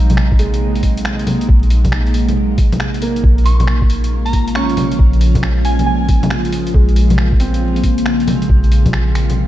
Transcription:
Already playing: A#1 C3 F#3 G#3 A#3 C4 D#4
0.10 closed hi-hat, low bongo
0.17 finger snap
0.32 kick
0.39 G#3, open hi-hat
0.54 closed hi-hat
0.75 open hi-hat
0.83 kick, open hi-hat
0.97 closed hi-hat
1.05 finger snap
1.19 closed hi-hat
1.27 open hi-hat, low bongo
1.41 closed hi-hat
1.49 A#1, kick
1.63 closed hi-hat
1.70 open hi-hat
1.85 kick, closed hi-hat, low bongo
1.92 finger snap
2.07 closed hi-hat
2.14 open hi-hat
2.29 closed hi-hat, low bongo
2.58 kick, open hi-hat
2.72 closed hi-hat, low bongo
2.80 finger snap
2.94 closed hi-hat
3.02 A#3, open hi-hat
3.16 closed hi-hat
3.24 A#1 C#3 F3 G#3 F4, kick
3.38 closed hi-hat
3.45 C#6, open hi-hat
3.60 closed hi-hat, low bongo
3.68 finger snap
3.82 kick
3.90 open hi-hat
4.04 closed hi-hat
4.25 A#5, open hi-hat
4.33 kick, open hi-hat
4.48 closed hi-hat
4.55 C#4 C#6, finger snap
4.69 closed hi-hat
4.77 open hi-hat, low bongo
4.92 closed hi-hat
4.99 A#1, kick
5.13 closed hi-hat
5.21 open hi-hat
5.35 kick, closed hi-hat, low bongo
5.43 finger snap
5.65 G#5, open hi-hat
5.79 closed hi-hat, low bongo
5.86 G#5
6.09 kick, open hi-hat
6.23 closed hi-hat, low bongo
6.30 finger snap
6.45 closed hi-hat
6.52 open hi-hat
6.67 closed hi-hat
6.74 A#1 G#3, kick
6.89 closed hi-hat
6.96 open hi-hat
7.10 closed hi-hat, low bongo
7.18 finger snap
7.32 kick
7.40 C4, open hi-hat
7.54 closed hi-hat
7.76 open hi-hat
7.84 kick, open hi-hat
7.98 closed hi-hat
8.06 finger snap
8.20 closed hi-hat
8.27 open hi-hat, low bongo
8.42 closed hi-hat
8.49 A#1, kick
8.64 closed hi-hat
8.72 open hi-hat
8.86 kick, closed hi-hat, low bongo
8.93 finger snap
9.15 finger snap, open hi-hat
9.30 closed hi-hat, low bongo

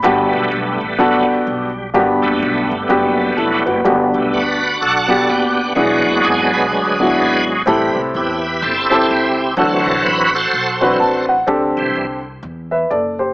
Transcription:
0.03 G1 G2 G3 A3 B3 D4 F#4 G4
0.33 B1
0.52 B1
0.81 A1
0.98 G1 F#3 A3 B3 D4 F#4 A4
1.47 B1
1.94 G1 G2 A#3 D4 F#4 G4
1.99 B3
2.22 F#1 G3 A3 B3
2.42 B1
2.71 G1
2.89 F#1 B3 D4 F#4 G4
3.37 F1 F#3 A3 B3 E4 A4
3.66 F#1 F#4 B4
3.84 G1 G2 A3 D4 F#4 G4
3.89 B3
4.14 B1 G3 A3 B3
4.33 D2 D4 F#4 B4
4.82 B1 D4 A4 F#5
5.08 B3 D4 F#4 G4
5.29 F#1 B3 D4 G4
5.75 E1 E3 F#3 G#3 B3 D4 E4 F#4 G#4
6.06 F#1
6.25 G#1 G#4
6.53 B1 D4 G#4 B4
6.72 D2
7.00 B3 D4 E4 F#4
7.19 G#1
7.66 A1 A2 C3 G3 C4 E4 G4 A4 B4
7.95 C2
8.14 E2 E4 G4 B4
8.62 G1 C4 E4 A4
8.90 C4 E4 G4 A4
9.10 C#2 C4 E4 G4
9.57 D2 D3 E3 F#3 C4 D4 F#4 A4
9.86 C2
10.05 A1 B4
10.35 F#4 A4 C5
10.53 B1
10.81 E3 F#3 C4 D4 F#4 B4
11.00 A1 A5
11.29 F#5
11.47 D2 D3 C4 D4 G4 A4
11.77 B1 E3 G3 C4
11.95 C2
12.43 E2
12.71 B4 E5
12.90 F#1 A4 D5
13.19 G4 C5

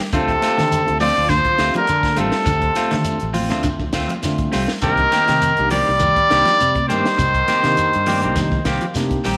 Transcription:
0.12 D2 C3 D3 A3 C4 D4 F4 A4, kick, closed hi-hat, low conga, shekere
0.28 kick, closed hi-hat, shekere
0.42 A3 C4 F4, snare, closed hi-hat, high conga, shekere
0.58 D3 D#3, snare, closed hi-hat, high conga, shekere
0.72 closed hi-hat, shekere
0.85 D2 A3 C4 D4 F4, closed hi-hat, shekere
1.00 F3 A3 C4 F4 D5, open hi-hat, high conga, shekere
1.16 D2 C4 F4, shekere
1.29 D3 F3 C5, kick, snare, closed hi-hat, high conga, shekere
1.44 muted fingered electric bass stroke, kick, closed hi-hat, low conga, shekere
1.58 D2 A3 C4 D4 F4 G4, snare, closed hi-hat, shekere
1.74 D3 F3 A#4, muted fingered electric bass stroke, closed hi-hat, high conga, shekere
1.87 D3, closed hi-hat, shekere
2.03 kick, snare, closed hi-hat, high conga, shekere
2.16 A1 C3 G3 A3 C4 D4 F4 A4, closed hi-hat, high conga, shekere
2.32 snare, closed hi-hat, shekere
2.46 D2 D3, kick, closed hi-hat, low conga, shekere
2.62 kick, closed hi-hat, shekere
2.75 A3 C4 F4, muted fingered electric bass stroke, snare, closed hi-hat, high conga, shekere
2.91 D3 D#3 A3 C4 D4 F4, snare, closed hi-hat, high conga, shekere
3.04 closed hi-hat, shekere
3.20 A1, closed hi-hat, shekere
3.33 F3 C4 F4, open hi-hat, high conga, shekere
3.49 D2 A3 C4 D4 F4, snare, closed hi-hat, low conga, shekere
3.63 D3, kick, closed hi-hat, high conga, shekere
3.79 kick, low conga, shekere
3.93 D2 A3 C4 F4, kick, snare, closed hi-hat, shekere
4.08 F3, closed hi-hat, high conga, shekere
4.23 D3 A3 C4 D4 F4, snare, closed hi-hat, shekere
4.38 kick, closed hi-hat, high conga, shekere
4.52 C2 G3 A3 C4 F4, snare, open hi-hat, shekere
4.68 snare, shekere
4.82 C2 D#3 A#3 C4 D4 D#4 G4 A#4, muted clean electric guitar stroke, kick, closed hi-hat, low conga, shekere
4.97 kick, closed hi-hat, shekere
5.11 D#3 A#3 C4 G4, snare, closed hi-hat, high conga, shekere
5.28 C3 D#3 A#3 C4 G4, snare, closed hi-hat, high conga, shekere
5.42 closed hi-hat, shekere
5.57 C2 A#3 D4 D#4 G4, closed hi-hat, shekere
5.70 D#3 F3 G3 A#3 C4 G4 D5, open hi-hat, high conga, shekere
5.87 C2, low conga, shekere
6.00 D#3, kick, closed hi-hat, high conga, shekere
6.16 kick, closed hi-hat, low conga, shekere
6.30 C2 D#3 A#3 C4 D4 D#4 G4, snare, closed hi-hat, shekere
6.45 F3, muted fingered electric bass stroke, snare, closed hi-hat, high conga, shekere
6.60 C3, closed hi-hat, shekere
6.75 kick, closed hi-hat, high conga, shekere
6.87 G2 D#3 G3 A#3 C4 D4 D#4 G4 C5, closed hi-hat, high conga, shekere
7.06 snare, closed hi-hat, shekere
7.18 C2 C3, kick, closed hi-hat, low conga, shekere
7.34 kick, closed hi-hat, shekere
7.48 D#3 A#3 C4 G4, muted fingered electric bass stroke, snare, closed hi-hat, high conga, shekere
7.63 C3 D#3 A#3 D4 D#4 G4, snare, closed hi-hat, shekere
7.77 closed hi-hat, shekere
7.93 G2, closed hi-hat, shekere
8.06 D#3 F3 A#3 C4 G4 D5, open hi-hat, high conga, shekere
8.22 C2 A#3 C4 D4 D#4 G4, closed hi-hat, low conga, shekere
8.36 D#3 D#5, kick, snare, closed hi-hat, high conga, shekere
8.51 kick, low conga, shekere
8.65 C2 D#3 A#3 C4 G4 F5, kick, snare, closed hi-hat, high conga, shekere
8.81 F3, closed hi-hat, shekere
8.94 C3 A#3 D4 D#4 G4 G5, snare, closed hi-hat, high conga, shekere
9.11 kick, closed hi-hat, shekere
9.24 A#1 D#3 G3 C4 G4 A#5, snare, open hi-hat, low conga, shekere

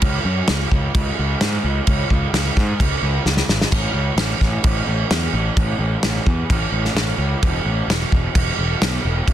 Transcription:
0.02 C#2, kick, crash
0.25 F#2
0.48 C#2, snare, crash
0.71 C#2, kick
0.95 C#2, kick, crash
1.19 C#2
1.41 G#2, snare, crash
1.64 C#2
1.87 C#2, kick, crash
2.10 C#2, kick
2.33 C#2, snare, crash
2.56 G#2, kick, snare
2.80 C#2, kick, crash
3.02 C#2
3.25 C#2, snare
3.37 snare
3.49 G#1, snare
3.61 snare
3.72 A1, kick, splash, crash
3.94 C#2
4.16 A1, snare, crash
4.41 A1, kick, snare
4.64 A1, kick, crash
4.87 A1
5.10 E2, snare, crash
5.33 A1
5.57 A1, kick, crash
5.79 A1
6.03 A1, snare, crash
6.26 E2, kick
6.50 A1, kick, crash
6.72 A1
6.85 snare
6.95 A1, snare, crash
7.18 C#2
7.43 E1, kick, crash
7.65 A1
7.88 E1, snare, crash
8.12 E1, kick
8.35 E1, kick, crash
8.58 E1
8.82 B1, snare, crash
9.05 E1
9.28 E1, kick, crash

